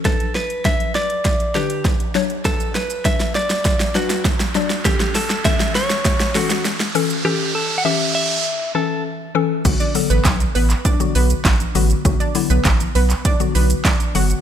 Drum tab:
CC |----------------|----------------|----------------|----------------|
HH |xx-xxx-xxx-xxx-x|xx-xxx-xxx-xxx-x|xxoxxxoxxxoxxxox|----------------|
SH |----------------|xxxxxxxxxxxxxxxx|xxxxxxxxxxxxxxxx|----------------|
CP |----------------|----------------|----------------|----------------|
SD |o-o-o-o-o-o-o-o-|o-o-oooooooooooo|oooooooooooooo--|----------------|
BD |o---o---o---o---|o---o---o---o---|o---o---o-------|----------------|

CC |x---------------|----------------|
HH |xxoxxxoxxxoxxxox|xxoxxxoxxxoxxxox|
SH |xxxxxxxxxxxxxxxx|xxxxxxxxxxxxxxxx|
CP |----x--x----x---|----x--x----x---|
SD |----o-------o---|----o-------o---|
BD |o---o---o---o---|o---o---o---o---|